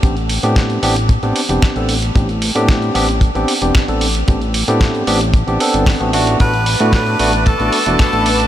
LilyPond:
<<
  \new Staff \with { instrumentName = "Analog synth pad" } { \time 4/4 \key a \dorian \tempo 4 = 113 r1 | r1 | r1 | <b' a'' d'''>1 | }
  \new Staff \with { instrumentName = "Tenor saxophone" } { \time 4/4 \key a \dorian r1 | r1 | r1 | b'4 b'4 a'4 a'4 | }
  \new Staff \with { instrumentName = "Tine electric piano" } { \time 4/4 \key a \dorian <b c' d' g'>16 r8 <b c' d' g'>8. <b c' d' g'>16 r8 <b c' d' g'>16 r16 <b c' d' g'>8 <b c' d' a'>16 r8 | <b c' d' g'>16 r8 <b c' d' g'>8. <b c' d' g'>16 r8 <b c' d' g'>16 r16 <b c' d' g'>8 <b c' d' a'>16 r8 | <b c' d' g'>16 r8 <b c' d' g'>8. <b c' d' g'>16 r8 <b c' d' g'>16 <b c' d' a'>8. <b c' d' fis'>16 <a b d' fis'>8 | <a b d' fis'>16 r8 <a b d' fis'>8. <a b d' fis'>16 r8 <a b d' fis'>16 r16 <a b d' fis'>8 <a b d' a'>16 r8 | }
  \new Staff \with { instrumentName = "Analog synth bass" } { \clef bass \time 4/4 \key a \dorian a,,8. a,8. a,,8. a,,16 r16 e,,16 r16 a,,8. | a,,8. a,8. a,,8. a,,16 r16 e,,16 r16 a,,8. | a,,8. a,8. a,,8. a,,16 r16 g,,8 a,,8. | a,,8. a,8. a,,8. a,,16 r16 e,,16 r16 a,,8. | }
  \new DrumStaff \with { instrumentName = "Drums" } \drummode { \time 4/4 <hh bd>16 hh16 hho16 hh16 <hh bd sn>16 hh16 hho16 hh16 <hh bd>16 hh16 hho16 hh16 <hh bd sn>16 hh16 hho16 hh16 | <hh bd>16 hh16 hho16 hh16 <hh bd sn>16 hh16 hho16 hh16 <hh bd>16 hh16 hho16 hh16 <hh bd sn>16 hh16 hho16 hh16 | <hh bd>16 hh16 hho16 hh16 <hh bd sn>16 hh16 hho16 hh16 <hh bd>16 hh16 hho16 hh16 <hho bd sn>16 hh16 hho16 hh16 | <hh bd>16 hh16 hho16 hh16 <hh bd sn>16 hh16 hho16 hh16 <hh bd>16 hh16 hho16 hh16 <hh bd sn>16 hh16 hho16 hh16 | }
>>